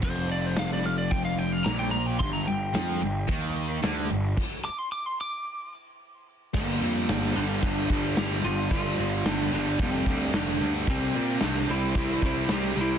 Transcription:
<<
  \new Staff \with { instrumentName = "Lead electric guitar" } { \time 4/4 \key g \minor \tempo 4 = 111 c''8 d''16 c''16 f''16 d''16 f''16 d''16 g''16 f''16 g''16 f''16 bes''16 g''16 bes''16 g''16 | c'''16 bes''16 g''2 r4. | r8 d'''16 c'''16 d'''16 c'''16 d'''4 r4. | bes4. d'8 d'4 g'8 f'8 |
f'4 d'8 d'8 c'4 d'8. r16 | c'4 d'8 e'8 e'8 e'8 g'8 e'8 | }
  \new Staff \with { instrumentName = "Distorted electric guitar" } { \clef bass \time 4/4 \key g \minor f,2. bes,4 | g,8 g,8 f8 g,8 ees4 d8 g,8 | r1 | <g, d g>8 <g, d g>8 <g, d g>8 <g, d g>8 <g, d g>8 <g, d g>8 <g, d g>8 <g, d g>8 |
<g, d g>8 <g, d g>8 <g, d g>8 <g, d g>8 <g, d g>8 <g, d g>8 <g, d g>8 <g, d g>8 | <c g c'>8 <c g c'>8 <c g c'>8 <c g c'>8 <c g c'>8 <c g c'>8 <c g c'>8 <c g c'>8 | }
  \new Staff \with { instrumentName = "Picked electric bass" } { \clef bass \time 4/4 \key g \minor f,,2. bes,,4 | g,,8 g,,8 f,8 g,,8 ees,4 d,8 g,,8 | r1 | g,,8 f,8 g,,8 g,,8 g,,8 g,,8 g,,8 g,,8 |
g,,8 g,,8 g,,8 g,,8 f,,8 d,8 f,,8 d,8 | c,8 bes,8 c,8 c,8 c,8 c,8 c,8 c,8 | }
  \new DrumStaff \with { instrumentName = "Drums" } \drummode { \time 4/4 <bd cymr>8 cymr8 <cymr sn>8 cymr8 <bd cymr>8 cymr8 <cymr sn>16 sn16 cymr8 | <bd cymr>8 cymr8 <cymr sn>8 cymr8 <bd cymr>8 cymr8 <cymr sn>8 cymr8 | <cymc bd>4 r4 r4 r4 | <cymc bd>8 cymc8 <cymc sn>8 cymc8 <cymc bd>8 <cymc bd>8 <cymc sn>8 cymc8 |
<cymc bd>8 cymc8 <cymc sn>8 cymc16 sn16 <cymc bd>8 <cymc bd>8 <cymc sn>8 cymc8 | <cymc bd>8 cymc8 <cymc sn>8 cymc8 <cymc bd>8 <cymc bd>8 <cymc sn>8 cymc8 | }
>>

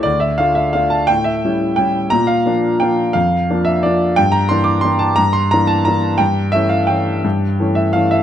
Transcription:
<<
  \new Staff \with { instrumentName = "Grand piano" } { \time 3/4 \key a \phrygian \tempo 4 = 174 d''8 e''8 f''8 e''8 f''8 a''8 | g''8 e''4. g''4 | bes''8 f''4. g''4 | f''4. e''8 d''4 |
g''8 bes''8 c'''8 d'''8 c'''8 a''8 | bes''8 c'''8 bes''8 a''8 bes''4 | g''4 e''8 f''8 g''4~ | g''4. e''8 f''8 e''8 | }
  \new Staff \with { instrumentName = "Grand piano" } { \time 3/4 \key a \phrygian d,4 <a d' f'>4 <a d' f'>4 | a,4 <g cis' e'>4 <g cis' e'>4 | bes,4 <f bes d'>4 <f bes d'>4 | f,4 <f bes d'>4 <f bes d'>4 |
g,4 <e bes d'>4 <e bes d'>4 | g,4 <e bes d'>4 <e bes d'>4 | g,4 <e a cis'>4 <e a cis'>4 | g,4 <e a cis'>4 <e a cis'>4 | }
>>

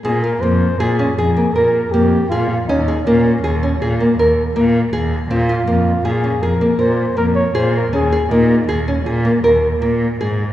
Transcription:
<<
  \new Staff \with { instrumentName = "Flugelhorn" } { \time 7/4 \key bes \dorian \tempo 4 = 160 aes'8 bes'8 c''4 aes'4 aes'4 bes'4 g'4 f'4 | ees'4 des'2 r1 | f'2 aes'4 bes'4 c''4 bes'8 des''8 c''8 bes'8 | aes'4 ees'4 r1 r4 | }
  \new Staff \with { instrumentName = "Nylon-string guitar" } { \time 7/4 \key bes \dorian c'8 f'8 bes4 aes'8 des'8 aes'8 bes8 bes'4 bes4 aes'4 | des'8 aes'8 bes4 aes'8 des'8 aes'8 bes8 bes'4 bes4 aes'4 | c'8 f'8 bes4 aes'8 des'8 aes'8 bes8 bes'4 bes4 aes'4 | des'8 aes'8 bes4 aes'8 des'8 aes'8 bes8 bes'4 bes4 aes'4 | }
  \new Staff \with { instrumentName = "Cello" } { \clef bass \time 7/4 \key bes \dorian bes,4 f,4 bes,4 f,4 bes,4 f,4 bes,4 | ees,4 bes,4 ees,4 bes,4 ees,4 bes,4 ees,4 | bes,4 f,4 bes,4 f,4 bes,4 f,4 bes,4 | ees,4 bes,4 ees,4 bes,4 ees,4 bes,4 aes,4 | }
>>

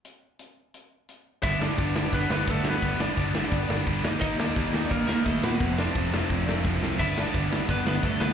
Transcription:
<<
  \new Staff \with { instrumentName = "Lead electric guitar" } { \time 4/4 \key g \major \tempo 4 = 173 r1 | <e' e''>8 <d' d''>4. <b b'>8 <b b'>8 <a a'>8 <b b'>8~ | <b b'>8 <d' d''>2 r4. | <ees' ees''>8 <d' d''>4. <bes bes'>8 <bes bes'>8 <a a'>8 <b b'>8~ |
<b b'>8 <d' d''>2 r4. | <e' e''>8 <d' d''>4. <b b'>8 <b b'>8 <a a'>8 <b b'>8 | }
  \new Staff \with { instrumentName = "Distorted electric guitar" } { \clef bass \time 4/4 \key g \major r1 | <g, d g b d'>8 <g, d g b d'>8 <g, d g b d'>8 <g, d g b d'>8 <g, d g b d'>8 <g, d g b d'>8 <g, d g b d'>8 <g, d g b d'>8 | <g, d g b d'>8 <g, d g b d'>8 <g, d g b d'>8 <g, d g b d'>8 <g, d g b d'>8 <g, d g b d'>8 <g, d g b d'>8 <ees g bes ees'>8 | <ees g bes ees'>8 <ees g bes ees'>8 <ees g bes ees'>8 <ees g bes ees'>8 <ees g bes ees'>8 <ees g bes ees'>8 <ees g bes ees'>8 <ees g bes ees'>8 |
<f, c f a c'>8 <f, c f a c'>8 <f, c f a c'>8 <f, c f a c'>8 <f, c f a c'>8 <f, c f a c'>8 <f, c f a c'>8 <f, c f a c'>8 | <g, d g b d'>8 <g, d g b d'>8 <g, d g b d'>8 <g, d g b d'>8 <g, d g b d'>8 <g, d g b d'>8 <g, d g b d'>8 <g, d g b d'>8 | }
  \new Staff \with { instrumentName = "Distorted electric guitar" } { \clef bass \time 4/4 \key g \major r1 | <g, d g>8 <g, d g>8 <g, d g>8 <g, d g>8 <g, d g>8 <g, d g>8 <g, d g>8 <g, d g>8 | <g, d g>8 <g, d g>8 <g, d g>8 <g, d g>8 <g, d g>8 <g, d g>8 <g, d g>8 <ees bes ees'>8 | <ees bes ees'>8 <ees bes ees'>8 <ees bes ees'>8 <ees bes ees'>8 <ees bes ees'>8 <ees bes ees'>8 <ees bes ees'>8 <ees bes ees'>8 |
<f, c f>8 <f, c f>8 <f, c f>8 <f, c f>8 <f, c f>8 <f, c f>8 <f, c f>8 <f, c f>8 | <g, d g>8 <g, d g>8 <g, d g>8 <g, d g>8 <g, d g>8 <g, d g>8 <g, d g>8 <g, d g>8 | }
  \new Staff \with { instrumentName = "Picked electric bass" } { \clef bass \time 4/4 \key g \major r1 | g,,4 g,,4 g,,8 g,,8 g,,8 d,8 | g,,4 g,,4 g,,8 g,,8 g,,8 ees,8 | ees,4 ees,4 ees,8 ees,8 ees,8 bes,8 |
f,,4 f,,4 f,,8 f,,8 f,,8 c,8 | g,,4 g,,4 g,,8 g,,8 g,,8 d,8 | }
  \new DrumStaff \with { instrumentName = "Drums" } \drummode { \time 4/4 hh4 hh4 hh4 hh4 | <bd cymr>8 sn8 <bd cymr>8 sn8 <bd cymr>8 sn8 <bd cymr>8 sn8 | <bd cymr>8 sn8 <bd cymr>8 sn8 <bd cymr>8 sn8 <bd cymr>8 sn8 | <bd cymr>8 sn8 <bd cymr>8 sn8 <bd cymr>8 sn8 <bd cymr>8 sn8 |
<bd cymr>8 sn8 <bd cymr>8 sn8 <bd cymr>8 sn8 <bd sn>8 sn8 | <cymc bd cymr>8 sn8 <bd cymr>8 sn8 <bd cymr>8 sn8 <bd cymr>8 sn8 | }
>>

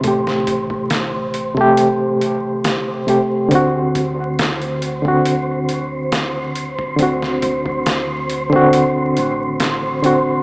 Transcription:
<<
  \new Staff \with { instrumentName = "Synth texture" } { \time 4/4 \key d \mixolydian \tempo 4 = 69 c''1~ | c''1~ | c''1 | }
  \new Staff \with { instrumentName = "Reed electric piano" } { \time 4/4 \key d \mixolydian <c a g'>4.~ <c a g'>16 <c a g'>4.~ <c a g'>16 <c a g'>8 | <d c' fis'>4.~ <d c' fis'>16 <d c' fis'>2~ <d c' fis'>16 | <d c' fis'>4.~ <d c' fis'>16 <d c' fis'>4.~ <d c' fis'>16 <d c' fis'>8 | }
  \new Staff \with { instrumentName = "Fingered electric bass" } { \clef bass \time 4/4 \key d \mixolydian a,,2.~ a,,8 r8 | d,2.~ d,8 r8 | d,2~ d,8 a,,4. | }
  \new DrumStaff \with { instrumentName = "Drums" } \drummode { \time 4/4 <hh bd>16 sn16 <hh bd>16 bd16 <hh sn>8 hh16 bd16 hh8 hh8 <hh sn>8 hh8 | <hh bd>8 <hh bd>8 <hh sn>16 hh16 hh16 bd16 hh8 hh8 <hh sn>8 hh16 bd16 | <hh bd>16 sn16 <hh bd>16 bd16 <hh sn>8 hh16 bd16 hh8 hh8 <hh sn>8 hh8 | }
>>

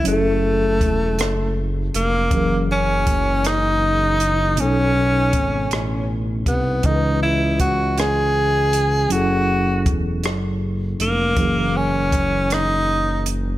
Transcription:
<<
  \new Staff \with { instrumentName = "Tenor saxophone" } { \time 6/8 \key fis \dorian \tempo 4. = 53 a2 r8 ais8~ | ais8 cis'4 dis'4. | cis'2 r8 b8 | dis'8 e'8 fis'8 gis'4. |
fis'4 r4. ais8~ | ais8 cis'4 dis'4 r8 | }
  \new Staff \with { instrumentName = "Tine electric piano" } { \time 6/8 \key fis \dorian <fis cis' e' gis' a'>2. | <e fis cis' gis' ais'>2. | <b, b cis' dis' a'>2. | <cis e cis' a' b' dis''>2. |
<fis cis' e' gis' a'>2. | <e fis cis' gis' ais'>2. | }
  \new Staff \with { instrumentName = "Analog synth bass" } { \clef bass \time 6/8 \key fis \dorian fis,,4 e,,8 fis,,4 eis,,8 | fis,,2. | b,,4 gis,,8 a,,4 bis,,8 | cis,2. |
fis,,4 e,,8 fis,,4 eis,,8 | fis,,2. | }
  \new DrumStaff \with { instrumentName = "Drums" } \drummode { \time 6/8 hh4 <hh bd>8 <hh ss>4 hh8 | <hh bd>4 <hh bd>8 <hh ss>4 hh8 | hh4 <hh bd>8 <hh ss>4 <hh bd>8 | <hh bd>4 <hh bd>8 <hh ss>4 hh8 |
hh4 <hh bd>8 <hh ss>4 hh8 | <hh bd>4 <hh bd>8 <hh ss>4 hh8 | }
>>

